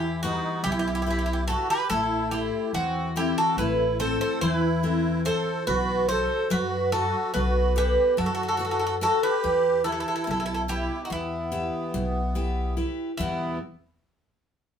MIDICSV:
0, 0, Header, 1, 5, 480
1, 0, Start_track
1, 0, Key_signature, 1, "minor"
1, 0, Tempo, 835655
1, 1093, Time_signature, 9, 3, 24, 8
1, 8496, End_track
2, 0, Start_track
2, 0, Title_t, "Bouzouki"
2, 0, Program_c, 0, 25
2, 0, Note_on_c, 0, 67, 78
2, 128, Note_off_c, 0, 67, 0
2, 131, Note_on_c, 0, 66, 83
2, 364, Note_off_c, 0, 66, 0
2, 366, Note_on_c, 0, 67, 87
2, 406, Note_off_c, 0, 67, 0
2, 413, Note_on_c, 0, 67, 63
2, 449, Note_off_c, 0, 67, 0
2, 455, Note_on_c, 0, 67, 72
2, 496, Note_off_c, 0, 67, 0
2, 503, Note_on_c, 0, 67, 48
2, 539, Note_off_c, 0, 67, 0
2, 545, Note_on_c, 0, 67, 66
2, 579, Note_off_c, 0, 67, 0
2, 586, Note_on_c, 0, 67, 54
2, 627, Note_off_c, 0, 67, 0
2, 634, Note_on_c, 0, 67, 62
2, 673, Note_off_c, 0, 67, 0
2, 681, Note_on_c, 0, 67, 52
2, 716, Note_off_c, 0, 67, 0
2, 723, Note_on_c, 0, 67, 59
2, 759, Note_off_c, 0, 67, 0
2, 766, Note_on_c, 0, 67, 58
2, 804, Note_off_c, 0, 67, 0
2, 848, Note_on_c, 0, 69, 84
2, 962, Note_off_c, 0, 69, 0
2, 978, Note_on_c, 0, 71, 90
2, 1087, Note_off_c, 0, 71, 0
2, 1089, Note_on_c, 0, 69, 98
2, 1315, Note_off_c, 0, 69, 0
2, 1329, Note_on_c, 0, 67, 75
2, 1574, Note_off_c, 0, 67, 0
2, 1576, Note_on_c, 0, 66, 82
2, 1819, Note_off_c, 0, 66, 0
2, 1821, Note_on_c, 0, 67, 94
2, 1930, Note_off_c, 0, 67, 0
2, 1941, Note_on_c, 0, 69, 89
2, 2054, Note_off_c, 0, 69, 0
2, 2056, Note_on_c, 0, 71, 82
2, 2279, Note_off_c, 0, 71, 0
2, 2297, Note_on_c, 0, 72, 89
2, 2408, Note_off_c, 0, 72, 0
2, 2418, Note_on_c, 0, 72, 88
2, 2533, Note_off_c, 0, 72, 0
2, 2535, Note_on_c, 0, 72, 93
2, 2598, Note_off_c, 0, 72, 0
2, 2598, Note_on_c, 0, 71, 93
2, 3017, Note_off_c, 0, 71, 0
2, 3020, Note_on_c, 0, 72, 98
2, 3242, Note_off_c, 0, 72, 0
2, 3258, Note_on_c, 0, 71, 94
2, 3493, Note_off_c, 0, 71, 0
2, 3496, Note_on_c, 0, 72, 90
2, 3720, Note_off_c, 0, 72, 0
2, 3741, Note_on_c, 0, 71, 91
2, 3963, Note_off_c, 0, 71, 0
2, 3976, Note_on_c, 0, 69, 92
2, 4212, Note_off_c, 0, 69, 0
2, 4214, Note_on_c, 0, 71, 82
2, 4461, Note_off_c, 0, 71, 0
2, 4467, Note_on_c, 0, 71, 95
2, 4687, Note_off_c, 0, 71, 0
2, 4699, Note_on_c, 0, 69, 88
2, 4739, Note_off_c, 0, 69, 0
2, 4746, Note_on_c, 0, 69, 58
2, 4787, Note_off_c, 0, 69, 0
2, 4794, Note_on_c, 0, 69, 68
2, 4834, Note_off_c, 0, 69, 0
2, 4843, Note_on_c, 0, 69, 52
2, 4867, Note_off_c, 0, 69, 0
2, 4874, Note_on_c, 0, 69, 65
2, 4918, Note_off_c, 0, 69, 0
2, 4924, Note_on_c, 0, 69, 58
2, 4960, Note_off_c, 0, 69, 0
2, 4967, Note_on_c, 0, 69, 56
2, 4998, Note_off_c, 0, 69, 0
2, 5005, Note_on_c, 0, 69, 57
2, 5045, Note_off_c, 0, 69, 0
2, 5052, Note_on_c, 0, 69, 63
2, 5086, Note_off_c, 0, 69, 0
2, 5093, Note_on_c, 0, 69, 62
2, 5135, Note_off_c, 0, 69, 0
2, 5186, Note_on_c, 0, 69, 91
2, 5295, Note_off_c, 0, 69, 0
2, 5303, Note_on_c, 0, 71, 87
2, 5652, Note_off_c, 0, 71, 0
2, 5654, Note_on_c, 0, 69, 78
2, 5692, Note_off_c, 0, 69, 0
2, 5699, Note_on_c, 0, 69, 56
2, 5739, Note_off_c, 0, 69, 0
2, 5746, Note_on_c, 0, 69, 64
2, 5782, Note_off_c, 0, 69, 0
2, 5789, Note_on_c, 0, 69, 58
2, 5827, Note_off_c, 0, 69, 0
2, 5834, Note_on_c, 0, 69, 67
2, 5874, Note_off_c, 0, 69, 0
2, 5882, Note_on_c, 0, 69, 52
2, 5913, Note_off_c, 0, 69, 0
2, 5920, Note_on_c, 0, 69, 55
2, 5960, Note_off_c, 0, 69, 0
2, 5973, Note_on_c, 0, 69, 55
2, 6000, Note_off_c, 0, 69, 0
2, 6007, Note_on_c, 0, 69, 62
2, 6046, Note_off_c, 0, 69, 0
2, 6057, Note_on_c, 0, 69, 57
2, 6093, Note_off_c, 0, 69, 0
2, 6142, Note_on_c, 0, 67, 85
2, 6326, Note_off_c, 0, 67, 0
2, 6347, Note_on_c, 0, 66, 56
2, 6384, Note_off_c, 0, 66, 0
2, 6390, Note_on_c, 0, 64, 76
2, 7320, Note_off_c, 0, 64, 0
2, 7568, Note_on_c, 0, 64, 77
2, 7795, Note_off_c, 0, 64, 0
2, 8496, End_track
3, 0, Start_track
3, 0, Title_t, "Accordion"
3, 0, Program_c, 1, 21
3, 0, Note_on_c, 1, 64, 64
3, 122, Note_off_c, 1, 64, 0
3, 142, Note_on_c, 1, 63, 75
3, 361, Note_off_c, 1, 63, 0
3, 374, Note_on_c, 1, 64, 85
3, 831, Note_off_c, 1, 64, 0
3, 852, Note_on_c, 1, 66, 76
3, 964, Note_off_c, 1, 66, 0
3, 974, Note_on_c, 1, 67, 96
3, 1086, Note_off_c, 1, 67, 0
3, 1091, Note_on_c, 1, 64, 79
3, 1316, Note_off_c, 1, 64, 0
3, 1338, Note_on_c, 1, 64, 68
3, 1560, Note_off_c, 1, 64, 0
3, 1575, Note_on_c, 1, 60, 76
3, 1798, Note_off_c, 1, 60, 0
3, 1820, Note_on_c, 1, 64, 86
3, 1929, Note_off_c, 1, 64, 0
3, 1941, Note_on_c, 1, 66, 65
3, 2050, Note_off_c, 1, 66, 0
3, 2058, Note_on_c, 1, 64, 75
3, 2280, Note_off_c, 1, 64, 0
3, 2299, Note_on_c, 1, 69, 85
3, 2407, Note_off_c, 1, 69, 0
3, 2415, Note_on_c, 1, 69, 81
3, 2527, Note_off_c, 1, 69, 0
3, 2537, Note_on_c, 1, 64, 83
3, 2995, Note_off_c, 1, 64, 0
3, 3019, Note_on_c, 1, 69, 76
3, 3242, Note_off_c, 1, 69, 0
3, 3262, Note_on_c, 1, 66, 86
3, 3483, Note_off_c, 1, 66, 0
3, 3509, Note_on_c, 1, 69, 78
3, 3727, Note_off_c, 1, 69, 0
3, 3744, Note_on_c, 1, 66, 82
3, 3965, Note_off_c, 1, 66, 0
3, 3974, Note_on_c, 1, 66, 86
3, 4200, Note_off_c, 1, 66, 0
3, 4217, Note_on_c, 1, 66, 81
3, 4442, Note_off_c, 1, 66, 0
3, 4451, Note_on_c, 1, 67, 79
3, 4678, Note_off_c, 1, 67, 0
3, 4700, Note_on_c, 1, 66, 85
3, 5157, Note_off_c, 1, 66, 0
3, 5179, Note_on_c, 1, 66, 74
3, 5291, Note_off_c, 1, 66, 0
3, 5308, Note_on_c, 1, 67, 101
3, 5641, Note_off_c, 1, 67, 0
3, 5659, Note_on_c, 1, 64, 76
3, 6117, Note_off_c, 1, 64, 0
3, 6138, Note_on_c, 1, 64, 76
3, 6324, Note_off_c, 1, 64, 0
3, 6334, Note_on_c, 1, 63, 42
3, 6374, Note_off_c, 1, 63, 0
3, 6385, Note_on_c, 1, 59, 63
3, 7318, Note_off_c, 1, 59, 0
3, 7581, Note_on_c, 1, 59, 68
3, 7802, Note_off_c, 1, 59, 0
3, 8496, End_track
4, 0, Start_track
4, 0, Title_t, "Steel-string acoustic guitar"
4, 0, Program_c, 2, 25
4, 0, Note_on_c, 2, 52, 58
4, 136, Note_on_c, 2, 55, 46
4, 136, Note_on_c, 2, 59, 51
4, 141, Note_on_c, 2, 71, 60
4, 357, Note_off_c, 2, 52, 0
4, 369, Note_on_c, 2, 47, 72
4, 518, Note_off_c, 2, 59, 0
4, 519, Note_off_c, 2, 55, 0
4, 522, Note_off_c, 2, 71, 0
4, 612, Note_on_c, 2, 64, 49
4, 616, Note_on_c, 2, 67, 34
4, 617, Note_on_c, 2, 71, 52
4, 837, Note_off_c, 2, 47, 0
4, 850, Note_off_c, 2, 64, 0
4, 852, Note_off_c, 2, 67, 0
4, 853, Note_off_c, 2, 71, 0
4, 855, Note_on_c, 2, 64, 53
4, 860, Note_on_c, 2, 71, 59
4, 861, Note_on_c, 2, 67, 47
4, 1047, Note_off_c, 2, 64, 0
4, 1048, Note_off_c, 2, 67, 0
4, 1049, Note_off_c, 2, 71, 0
4, 1093, Note_on_c, 2, 57, 75
4, 1331, Note_on_c, 2, 64, 48
4, 1335, Note_on_c, 2, 69, 46
4, 1339, Note_on_c, 2, 72, 50
4, 1559, Note_off_c, 2, 57, 0
4, 1575, Note_on_c, 2, 52, 72
4, 1717, Note_off_c, 2, 64, 0
4, 1720, Note_off_c, 2, 69, 0
4, 1720, Note_off_c, 2, 72, 0
4, 1814, Note_on_c, 2, 64, 49
4, 1814, Note_on_c, 2, 69, 46
4, 1817, Note_on_c, 2, 60, 62
4, 2041, Note_off_c, 2, 52, 0
4, 2062, Note_on_c, 2, 57, 64
4, 2198, Note_off_c, 2, 64, 0
4, 2199, Note_off_c, 2, 69, 0
4, 2201, Note_off_c, 2, 60, 0
4, 2295, Note_on_c, 2, 64, 54
4, 2299, Note_on_c, 2, 60, 62
4, 2301, Note_on_c, 2, 69, 41
4, 2525, Note_off_c, 2, 57, 0
4, 2541, Note_on_c, 2, 52, 78
4, 2680, Note_off_c, 2, 64, 0
4, 2682, Note_off_c, 2, 69, 0
4, 2683, Note_off_c, 2, 60, 0
4, 2775, Note_on_c, 2, 64, 46
4, 2779, Note_on_c, 2, 60, 54
4, 2780, Note_on_c, 2, 69, 42
4, 3005, Note_off_c, 2, 52, 0
4, 3010, Note_off_c, 2, 64, 0
4, 3012, Note_off_c, 2, 69, 0
4, 3016, Note_on_c, 2, 64, 61
4, 3023, Note_on_c, 2, 69, 46
4, 3024, Note_on_c, 2, 72, 61
4, 3163, Note_off_c, 2, 60, 0
4, 3209, Note_off_c, 2, 64, 0
4, 3211, Note_off_c, 2, 69, 0
4, 3213, Note_off_c, 2, 72, 0
4, 3256, Note_on_c, 2, 59, 74
4, 3496, Note_on_c, 2, 66, 44
4, 3497, Note_off_c, 2, 59, 0
4, 3499, Note_on_c, 2, 69, 47
4, 3500, Note_on_c, 2, 75, 58
4, 3735, Note_on_c, 2, 54, 69
4, 3881, Note_off_c, 2, 69, 0
4, 3882, Note_off_c, 2, 66, 0
4, 3884, Note_off_c, 2, 75, 0
4, 3975, Note_on_c, 2, 69, 50
4, 3979, Note_on_c, 2, 75, 55
4, 3980, Note_on_c, 2, 71, 43
4, 4203, Note_off_c, 2, 54, 0
4, 4218, Note_on_c, 2, 59, 58
4, 4362, Note_off_c, 2, 69, 0
4, 4363, Note_off_c, 2, 71, 0
4, 4364, Note_off_c, 2, 75, 0
4, 4456, Note_on_c, 2, 69, 54
4, 4457, Note_on_c, 2, 71, 49
4, 4462, Note_on_c, 2, 75, 51
4, 4685, Note_off_c, 2, 59, 0
4, 4693, Note_on_c, 2, 54, 68
4, 4842, Note_off_c, 2, 69, 0
4, 4843, Note_off_c, 2, 71, 0
4, 4844, Note_off_c, 2, 75, 0
4, 4935, Note_on_c, 2, 69, 50
4, 4938, Note_on_c, 2, 71, 51
4, 4943, Note_on_c, 2, 75, 51
4, 5162, Note_off_c, 2, 54, 0
4, 5170, Note_off_c, 2, 69, 0
4, 5173, Note_off_c, 2, 71, 0
4, 5176, Note_off_c, 2, 75, 0
4, 5177, Note_on_c, 2, 69, 62
4, 5180, Note_on_c, 2, 71, 47
4, 5183, Note_on_c, 2, 75, 66
4, 5370, Note_off_c, 2, 69, 0
4, 5372, Note_off_c, 2, 71, 0
4, 5374, Note_off_c, 2, 75, 0
4, 5420, Note_on_c, 2, 52, 70
4, 5654, Note_on_c, 2, 67, 47
4, 5658, Note_on_c, 2, 64, 41
4, 5662, Note_on_c, 2, 71, 55
4, 5886, Note_off_c, 2, 52, 0
4, 5900, Note_on_c, 2, 47, 70
4, 6041, Note_off_c, 2, 64, 0
4, 6041, Note_off_c, 2, 67, 0
4, 6045, Note_off_c, 2, 71, 0
4, 6136, Note_on_c, 2, 64, 54
4, 6140, Note_on_c, 2, 67, 49
4, 6143, Note_on_c, 2, 71, 61
4, 6365, Note_off_c, 2, 47, 0
4, 6376, Note_on_c, 2, 52, 64
4, 6521, Note_off_c, 2, 64, 0
4, 6523, Note_off_c, 2, 67, 0
4, 6526, Note_off_c, 2, 71, 0
4, 6615, Note_on_c, 2, 64, 60
4, 6620, Note_on_c, 2, 67, 52
4, 6620, Note_on_c, 2, 71, 52
4, 6843, Note_off_c, 2, 52, 0
4, 6859, Note_on_c, 2, 47, 67
4, 7001, Note_off_c, 2, 64, 0
4, 7002, Note_off_c, 2, 71, 0
4, 7003, Note_off_c, 2, 67, 0
4, 7095, Note_on_c, 2, 64, 47
4, 7098, Note_on_c, 2, 67, 45
4, 7100, Note_on_c, 2, 71, 47
4, 7323, Note_off_c, 2, 47, 0
4, 7328, Note_off_c, 2, 64, 0
4, 7328, Note_off_c, 2, 67, 0
4, 7329, Note_off_c, 2, 71, 0
4, 7334, Note_on_c, 2, 64, 56
4, 7336, Note_on_c, 2, 67, 53
4, 7340, Note_on_c, 2, 71, 52
4, 7528, Note_off_c, 2, 64, 0
4, 7528, Note_off_c, 2, 67, 0
4, 7528, Note_off_c, 2, 71, 0
4, 7574, Note_on_c, 2, 40, 59
4, 7578, Note_on_c, 2, 47, 43
4, 7578, Note_on_c, 2, 52, 51
4, 7584, Note_on_c, 2, 55, 48
4, 7585, Note_on_c, 2, 59, 64
4, 7799, Note_off_c, 2, 40, 0
4, 7799, Note_off_c, 2, 47, 0
4, 7801, Note_off_c, 2, 52, 0
4, 7802, Note_off_c, 2, 55, 0
4, 7804, Note_off_c, 2, 59, 0
4, 8496, End_track
5, 0, Start_track
5, 0, Title_t, "Upright bass"
5, 0, Program_c, 3, 32
5, 0, Note_on_c, 3, 40, 88
5, 230, Note_off_c, 3, 40, 0
5, 373, Note_on_c, 3, 35, 100
5, 878, Note_off_c, 3, 35, 0
5, 1093, Note_on_c, 3, 33, 84
5, 1430, Note_off_c, 3, 33, 0
5, 1569, Note_on_c, 3, 40, 87
5, 1907, Note_off_c, 3, 40, 0
5, 2051, Note_on_c, 3, 33, 98
5, 2389, Note_off_c, 3, 33, 0
5, 2539, Note_on_c, 3, 40, 100
5, 3043, Note_off_c, 3, 40, 0
5, 3262, Note_on_c, 3, 35, 93
5, 3597, Note_off_c, 3, 35, 0
5, 3745, Note_on_c, 3, 42, 98
5, 4080, Note_off_c, 3, 42, 0
5, 4226, Note_on_c, 3, 35, 101
5, 4560, Note_off_c, 3, 35, 0
5, 4703, Note_on_c, 3, 42, 90
5, 5206, Note_off_c, 3, 42, 0
5, 5424, Note_on_c, 3, 40, 98
5, 5759, Note_off_c, 3, 40, 0
5, 5905, Note_on_c, 3, 35, 86
5, 6239, Note_off_c, 3, 35, 0
5, 6381, Note_on_c, 3, 40, 96
5, 6716, Note_off_c, 3, 40, 0
5, 6859, Note_on_c, 3, 35, 90
5, 7362, Note_off_c, 3, 35, 0
5, 7579, Note_on_c, 3, 40, 90
5, 7801, Note_off_c, 3, 40, 0
5, 8496, End_track
0, 0, End_of_file